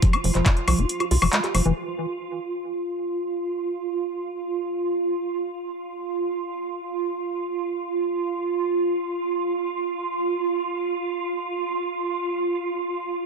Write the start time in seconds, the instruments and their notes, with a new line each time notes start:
Already playing: synth drone F4
0.02 acid bass F3, kick, closed hi-hat
0.13 acid bass G4, closed hi-hat, high woodblock
0.24 analog synth bass F1, acid bass F3, open hi-hat
0.35 analog synth bass F1, acid bass F3, clap, closed hi-hat
0.46 acid bass G4, kick, clap, closed hi-hat, high woodblock
0.57 closed hi-hat
0.68 analog synth bass C2, acid bass F3, open hi-hat, high woodblock
0.78 analog synth bass F1, acid bass F4, closed hi-hat
0.89 closed hi-hat
1.00 acid bass F4, closed hi-hat, high woodblock
1.11 analog synth bass C2, acid bass F4, open hi-hat
1.22 analog synth bass F1, acid bass F3, open hi-hat, high woodblock
1.33 acid bass G#3, clap, closed hi-hat
1.44 acid bass G4, clap, closed hi-hat
1.55 analog synth bass F1, acid bass F3, open hi-hat, high woodblock
1.65 analog synth bass F1, acid bass E3, closed hi-hat
1.76 synth drone F4